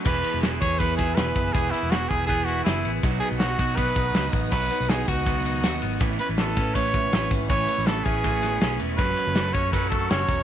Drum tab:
CC |x-------|--------|--------|--------|
RD |-xxxxxxx|xxxxxxxx|xxxxxxxx|xxxxxxxx|
SD |--o--oo-|--o---o-|--o---o-|--o---o-|
BD |o--ooo-o|o--oo---|o--ooo-o|o--oo---|

CC |--------|--------|--------|
RD |xxxxxxxx|xxxxxxxx|xxxxxxxx|
SD |--o---o-|--o--oo-|--o---o-|
BD |o--ooo-o|o--oo---|o--ooo-o|